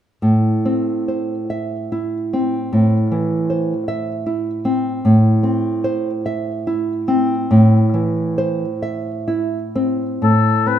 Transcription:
0.22 nylon-string guitar A2
0.65 nylon-string guitar C4
1.08 nylon-string guitar C5
1.50 nylon-string guitar E5
1.92 nylon-string guitar E4
2.33 nylon-string guitar C4
2.73 nylon-string guitar A2
3.12 nylon-string guitar E3
3.50 nylon-string guitar C5
3.88 nylon-string guitar E5
4.26 nylon-string guitar E4
4.65 nylon-string guitar C4
5.05 nylon-string guitar A2
5.43 nylon-string guitar C4
5.84 nylon-string guitar C5
6.26 nylon-string guitar E5
6.67 nylon-string guitar E4
7.08 nylon-string guitar C4
7.51 nylon-string guitar A2
7.94 nylon-string guitar E3
8.38 nylon-string guitar C5
8.82 nylon-string guitar E5
9.28 nylon-string guitar E4
9.76 nylon-string guitar C4
10.22 nylon-string guitar A2, oboe A4
10.67 nylon-string guitar C4, oboe B4

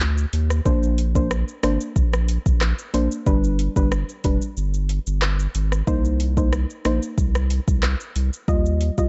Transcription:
Already playing: sub bass D2
0.00 clap, shaker
0.18 shaker
0.33 sub bass D#2, closed hi-hat, shaker
0.50 cross-stick, shaker
0.65 sub bass A#1, synth pluck A#3 D4 C5, kick, shaker
0.83 shaker
0.98 closed hi-hat, shaker
1.15 synth pluck A#3 D4 C5, kick, shaker
1.31 cross-stick, shaker
1.48 shaker
1.63 sub bass G#1, synth pluck A#3 D4 C5, cross-stick, closed hi-hat, shaker
1.81 shaker
1.96 sub bass A#1, kick, shaker
2.13 cross-stick, shaker
2.29 closed hi-hat, shaker
2.46 sub bass A#1, kick, shaker
2.61 cross-stick, clap, shaker
2.79 shaker
2.94 sub bass A#1, synth pluck A#3 D4 C5, closed hi-hat, shaker
3.11 shaker
3.26 sub bass G1, synth pluck G3 D4 B4, kick, shaker
3.44 shaker
3.59 closed hi-hat, shaker
3.76 sub bass G1, synth pluck G3 D4 B4, kick, shaker
3.92 cross-stick, shaker
4.09 shaker
4.24 sub bass F1, synth pluck G3 D4 B4, kick, closed hi-hat, shaker
4.42 shaker
4.57 sub bass G1, shaker
4.74 shaker
4.89 closed hi-hat, shaker
5.07 sub bass G1, shaker
5.22 cross-stick, clap, shaker
5.39 shaker
5.55 sub bass G#1, closed hi-hat, shaker
5.72 cross-stick, shaker
5.87 sub bass C2, synth pluck A#3 D#4 C5, kick, shaker
6.05 shaker
6.20 closed hi-hat, shaker
6.37 synth pluck A#3 D#4 C5, kick, shaker
6.53 cross-stick, shaker
6.70 shaker
6.85 sub bass A#1, synth pluck A#3 D#4 C5, cross-stick, closed hi-hat, shaker
7.03 shaker
7.18 sub bass C2, kick, shaker
7.35 cross-stick, shaker
7.50 closed hi-hat, shaker
7.68 sub bass C2, kick, shaker
7.83 cross-stick, clap, shaker
8.00 shaker
8.16 sub bass C2, closed hi-hat, shaker
8.33 shaker
8.48 sub bass D#2, synth pluck G3 F4 D#5, kick, shaker
8.66 shaker
8.81 closed hi-hat, shaker
8.98 sub bass C2, synth pluck G3 F4 D#5, kick, shaker

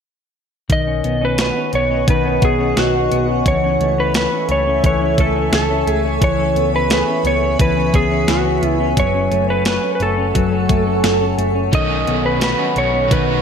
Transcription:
0.69 picked electric bass B1, clean electric guitar D#3, ambient pad B4 D#5 F#5 C#6, electric slide guitar D#5, kick, closed hi-hat
0.87 clean electric guitar C#4
1.04 picked electric bass B1, clean electric guitar B3, closed hi-hat
1.21 clean electric guitar C#4, electric slide guitar B4
1.38 clean electric guitar F#4, electric slide guitar B4, snare, closed hi-hat
1.57 clean electric guitar C#4
1.73 picked electric bass B1, clean electric guitar B3, electric slide guitar C#5, closed hi-hat
1.91 clean electric guitar C#4
2.08 picked electric bass B1, clean electric guitar D#3, electric slide guitar B4, kick, closed hi-hat
2.25 clean electric guitar C#4
2.42 picked electric bass B1, clean electric guitar B3, electric slide guitar G#4, kick, closed hi-hat
2.60 clean electric guitar C#4
2.77 picked electric bass B1, clean electric guitar F#4, electric slide guitar F#4, snare, closed hi-hat
2.94 clean electric guitar C#4
3.12 picked electric bass B1, clean electric guitar B3, closed hi-hat
3.29 clean electric guitar C#4
3.46 picked electric bass C#2, clean electric guitar E3, ambient pad A4 E5 G#5, electric slide guitar C#5, kick, closed hi-hat
3.64 clean electric guitar C#4
3.80 picked electric bass C#2, clean electric guitar A3, closed hi-hat
3.98 clean electric guitar C#4, electric slide guitar B4
4.14 electric slide guitar B4, snare, closed hi-hat
4.32 clean electric guitar C#4
4.49 picked electric bass C#2, clean electric guitar A3, electric slide guitar C#5, closed hi-hat
4.67 clean electric guitar C#4
4.84 picked electric bass C#2, clean electric guitar E3, electric slide guitar C#5, kick, closed hi-hat
5.01 clean electric guitar C#4
5.18 picked electric bass C#2, clean electric guitar A3, electric slide guitar A4, kick, closed hi-hat
5.36 clean electric guitar C#4
5.52 picked electric bass C#2, electric slide guitar A4, snare, closed hi-hat
5.70 clean electric guitar C#4
5.87 picked electric bass C#2, clean electric guitar A3, electric slide guitar G#4, closed hi-hat
6.05 clean electric guitar C#4
6.22 picked electric bass C#2, clean electric guitar E3, ambient pad B4 E5, electric slide guitar C#5, kick, closed hi-hat
6.39 clean electric guitar C#4
6.55 picked electric bass C#2, clean electric guitar B3, closed hi-hat
6.74 clean electric guitar C#4, electric slide guitar B4
6.90 clean electric guitar G#4, electric slide guitar B4, snare, closed hi-hat
7.08 clean electric guitar C#4
7.24 picked electric bass C#2, clean electric guitar B3, electric slide guitar C#5, closed hi-hat
7.43 clean electric guitar C#4
7.59 picked electric bass C#2, clean electric guitar E3, electric slide guitar B4, kick, closed hi-hat
7.77 clean electric guitar C#4
7.94 picked electric bass C#2, clean electric guitar B3, electric slide guitar G#4, kick, closed hi-hat
8.11 clean electric guitar C#4
8.28 picked electric bass C#2, electric slide guitar F#4, clean electric guitar G#4, snare, closed hi-hat
8.45 clean electric guitar C#4
8.62 picked electric bass C#2, clean electric guitar B3, closed hi-hat
8.80 clean electric guitar C#4
8.97 picked electric bass F#1, clean electric guitar F#3, ambient pad A4 F#5 C#6, electric slide guitar C#5, kick, closed hi-hat
9.14 clean electric guitar C#4
9.31 picked electric bass F#1, clean electric guitar A3, closed hi-hat
9.49 clean electric guitar C#4, electric slide guitar B4
9.65 electric slide guitar B4, snare, closed hi-hat
9.83 clean electric guitar C#4
9.95 electric slide guitar B4
10.00 picked electric bass F#1, clean electric guitar A3, electric slide guitar A4, closed hi-hat
10.17 clean electric guitar C#4
10.35 picked electric bass F#1, clean electric guitar F#3, kick, closed hi-hat
10.52 clean electric guitar C#4
10.69 picked electric bass F#1, clean electric guitar A3, kick, closed hi-hat
10.87 clean electric guitar C#4
11.04 picked electric bass F#1, snare, closed hi-hat
11.21 clean electric guitar C#4
11.38 picked electric bass F#1, clean electric guitar A3, closed hi-hat
11.55 clean electric guitar C#4
11.72 picked electric bass B1, overdriven electric guitar B2 F#3 C#4 D#4, clean electric guitar D#3, ambient pad B4 D#5, electric slide guitar D#5, kick, closed hi-hat
11.76 overdriven electric guitar F#4
11.90 clean electric guitar C#4
12.07 picked electric bass B1, clean electric guitar B3, closed hi-hat
12.24 clean electric guitar C#4, electric slide guitar B4
12.40 overdriven electric guitar F#3 C#4 D#4, clean electric guitar F#4, electric slide guitar B4, snare, closed hi-hat
12.46 overdriven electric guitar F#4
12.59 clean electric guitar C#4
12.76 picked electric bass B1, clean electric guitar B3, electric slide guitar C#5, closed hi-hat
12.94 clean electric guitar C#4
13.08 picked electric bass B1, overdriven electric guitar B2 F#3, clean electric guitar D#3, kick, closed hi-hat
13.12 overdriven electric guitar C#4 D#4, electric slide guitar B4
13.17 overdriven electric guitar F#4
13.28 clean electric guitar C#4

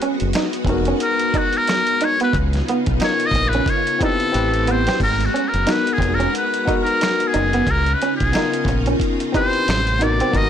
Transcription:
Already playing: string machine G#3 B3 F#4, muted trumpet B4
0.02 clean electric guitar C#4, closed hi-hat
0.20 fingered electric bass F#1, closed hi-hat
0.33 clean electric guitar D#4, finger snap, snare, closed hi-hat
0.53 closed hi-hat
0.65 fingered electric bass F1, tine electric piano B3 D#4, kick, closed hi-hat
0.69 tine electric piano F#4 A#4, muted clean electric guitar stroke
0.85 clean electric guitar C#4, closed hi-hat
1.00 muted trumpet A#4, closed hi-hat
1.19 closed hi-hat
1.34 clean electric guitar D#4, muted trumpet F#4, kick, closed hi-hat
1.53 closed hi-hat
1.57 muted trumpet A#4
1.68 finger snap, muted clean electric guitar stroke, snare, closed hi-hat
1.87 closed hi-hat
2.01 clean electric guitar D#4, muted trumpet C#5, closed hi-hat
2.20 clean electric guitar B3, muted trumpet B4, closed hi-hat
2.32 fingered electric bass C#2, string machine C#3 B3 D#4 F4, kick, closed hi-hat
2.53 snare, closed hi-hat
2.68 clean electric guitar B3, closed hi-hat
2.86 fingered electric bass B1, kick, closed hi-hat
3.00 tine electric piano B3 D#4 F4 A#4, clean electric guitar D#4, finger snap, snare, closed hi-hat
3.04 muted trumpet C#5
3.20 closed hi-hat
3.26 muted trumpet D#5
3.31 fingered electric bass A#1, kick, closed hi-hat
3.36 muted clean electric guitar stroke
3.48 muted trumpet B4
3.53 clean electric guitar C#4, closed hi-hat
3.66 muted trumpet C#5, kick, closed hi-hat
3.87 closed hi-hat
3.99 tine electric piano C4 E4 G4 B4, clean electric guitar D#4, kick, closed hi-hat
4.04 muted trumpet A4
4.20 closed hi-hat
4.32 fingered electric bass A1, string machine A3 C4 G4, tine electric piano C4 E4 G4 B4, closed hi-hat
4.36 muted clean electric guitar stroke
4.54 closed hi-hat
4.67 clean electric guitar B3, muted trumpet C5, closed hi-hat
4.87 clean electric guitar C4, snare, closed hi-hat
5.00 fingered electric bass G#1, string machine G#3 B3 F#4 A#5, muted trumpet A#4, kick, crash
5.20 closed hi-hat
5.26 muted trumpet F#4
5.34 clean electric guitar C#4, closed hi-hat
5.48 muted trumpet A#4
5.54 fingered electric bass F#1, closed hi-hat
5.66 tine electric piano B3 D#4 F#4 A#4, clean electric guitar D#4, finger snap, snare, closed hi-hat
5.71 muted trumpet B4
5.87 closed hi-hat
5.93 muted trumpet G#4
5.98 fingered electric bass F1, muted clean electric guitar stroke, kick, closed hi-hat
6.14 muted trumpet A#4
6.20 clean electric guitar C#4, closed hi-hat
6.35 muted trumpet B4, closed hi-hat
6.54 closed hi-hat
6.65 tine electric piano B3 D#4 F#4, clean electric guitar D#4, kick, closed hi-hat
6.69 tine electric piano A#4
6.82 muted trumpet A#4
6.87 closed hi-hat
7.01 finger snap, muted clean electric guitar stroke, snare, closed hi-hat
7.20 closed hi-hat
7.27 muted trumpet G#4
7.34 fingered electric bass F#1, clean electric guitar D#4, closed hi-hat
7.53 clean electric guitar B3, closed hi-hat
7.66 fingered electric bass C#2, string machine C#3 C#4 D#4 F4, kick, closed hi-hat
7.71 muted trumpet A#4
7.86 closed hi-hat
7.94 muted trumpet B4
8.02 clean electric guitar C#4, closed hi-hat
8.16 muted trumpet G#4
8.20 fingered electric bass B1, kick, closed hi-hat
8.32 tine electric piano B3 D#4 F4, clean electric guitar D#4, finger snap, snare, closed hi-hat
8.37 tine electric piano A#4
8.54 closed hi-hat
8.65 fingered electric bass A#1, kick, closed hi-hat
8.69 muted clean electric guitar stroke
8.86 clean electric guitar C#4, closed hi-hat
9.00 kick, closed hi-hat
9.20 closed hi-hat
9.32 tine electric piano C4 E4 G4, clean electric guitar D#4, kick, closed hi-hat
9.36 tine electric piano B4, muted trumpet C5
9.53 closed hi-hat
9.67 fingered electric bass A1, string machine C3 G3, finger snap, muted clean electric guitar stroke, snare, closed hi-hat
9.87 closed hi-hat
9.99 tine electric piano B3 D#4 F#4, clean electric guitar D#4, closed hi-hat
10.03 tine electric piano A#4, muted trumpet D5
10.20 clean electric guitar C4, closed hi-hat
10.32 fingered electric bass G#1, string machine G#3 B3 F#4 A#5, tine electric piano B3 D#4 F#4, kick, closed hi-hat
10.36 tine electric piano A#4, muted trumpet D#5

